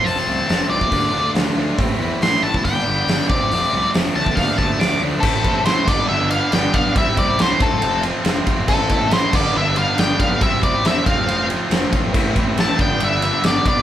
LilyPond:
<<
  \new Staff \with { instrumentName = "Lead electric guitar" } { \time 4/4 \key f \lydian \tempo 4 = 139 a''4. d''4. r4 | r4 c'''8 a''8 g''4. d''8~ | d''4 r8 a''8 f''8 a''8 d'''8 r8 | a'4 c''8 d''8 e''8 f''8 g''8 f''8 |
e''8 d''8 c''8 a'4 r4. | a'4 c''8 d''8 e''8 f''8 g''8 f''8 | e''8 d''8 e''8 f''4 r4. | r4 a''8 g''8 e''4 d''8 d''8 | }
  \new Staff \with { instrumentName = "Overdriven electric guitar" } { \time 4/4 \key f \lydian <f a c' f'>8 <f a c' f'>8 <f a c' f'>8 <f a c' f'>8 <d a d' f'>8 <d a d' f'>8 <d a d' f'>8 <d a d' f'>8 | <a, e a c' e'>8 <a, e a c' e'>8 <a, e a c' e'>8 <a, e a c' e'>8 <g, d g b d'>8 <g, d g b d'>8 <g, d g b d'>8 <f, c f a c'>8 | <f, c f a c'>8 <f, c f a c'>8 <f, c f a c'>8 <f, c f a c'>8 <d f a d'>8 <d f a d'>8 <d f a d'>8 <d f a d'>8 | <a, e a c' e'>8 <a c' e'>8 <e a c' e'>8 <g, d g b d'>8 <g, d g b d'>8 <g b d'>8 <d g b d'>8 <g b d'>8 |
<c g c' e'>8 <g c' e'>8 <c g c' e'>8 <f a c' f'>8 <f a c' f'>8 <a c' f'>8 <f a c' f'>8 <a c' f'>8 | <a, e a c' e'>8 <a c' e'>8 <e a c' e'>8 <g, d g b d'>8 <g, d g b d'>8 <g b d'>8 <d g b d'>8 <g b d'>8 | <c g c' e'>8 <g c' e'>8 <c g c' e'>8 <f a c' f'>8 <f a c' f'>8 <a c' f'>8 <f a c' f'>8 <a c' f'>8 | <a, e a c' e'>8 <a c' e'>8 <e a c' e'>8 <g, d g b d'>8 <g, d g b d'>8 <g b d'>8 <d g b d'>8 <g b d'>8 | }
  \new Staff \with { instrumentName = "Picked electric bass" } { \clef bass \time 4/4 \key f \lydian f,,8 c,8 f,,8 c,8 d,8 d,8 d,8 d,8 | a,,8 e,8 a,,8 a,,8 g,,8 g,,8 g,,8 f,,8 | f,,8 c,8 f,,8 d,8 d,8 d,8 d,8 d,8 | a,,8 a,,8 a,,8 g,,8 g,,4 g,,8 b,,8 |
c,8 c,8 c,8 f,,8 f,,4 f,,8 f,,8 | a,,8 a,,8 a,,8 g,,8 g,,4 g,,8 b,,8 | c,8 c,8 e,8 f,,8 f,,4 f,,8 b,,8 | a,,8 a,,8 a,,8 g,,8 g,,4 g,,8 b,,8 | }
  \new DrumStaff \with { instrumentName = "Drums" } \drummode { \time 4/4 hho4 <hho sn>8. bd16 <hho bd>4 <hho sn>16 sn8. | <hho bd>4 <hho sn>8. bd16 <hho bd>4 <hho sn>8 bd8 | hho4 <hho sn>8. bd16 <hho bd>8 bd8 <hho sn>4 | <cymc bd>8 <bd cymr>8 <cymr sn>8 <cymc bd sn>8 r8 cymr8 <cymr sn>8 <bd cymr>8 |
<bd cymr>8 <bd cymr>8 <cymr sn>8 <bd cymr>8 cymr8 cymr8 <cymr sn>8 <bd cymr>8 | <cymc bd>8 <bd cymr>8 <cymr sn>8 <cymc bd sn>8 r8 cymr8 <cymr sn>8 <bd cymr>8 | <bd cymr>8 <bd cymr>8 <cymr sn>8 <bd cymr>8 cymr8 cymr8 <cymr sn>8 <bd cymr>8 | <cymc bd>8 <bd cymr>8 <cymr sn>8 <bd cymr>8 cymr8 <cymr sn>8 <cymr sn>8 <bd cymr>8 | }
>>